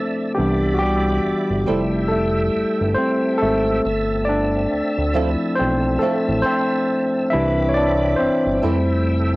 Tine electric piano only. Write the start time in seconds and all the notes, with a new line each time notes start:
Already playing: A3 C4 A4 C5
0.35 E3 G3 B3 D4 G4
0.74 F#4
0.79 G3 G4
1.68 G3 A3 E4
2.08 A3 A4
2.94 C4 C5
3.38 A4
3.42 A3
4.25 D5
4.29 D4
5.15 F3 A3 C4 E4
5.55 C4 C5
5.99 A3 A4
6.42 C5
6.46 C4
7.30 E3 D4 E4 B4 E5
7.69 C#5
7.74 D4 D5
8.16 C4 C5
8.63 G3 A3 E4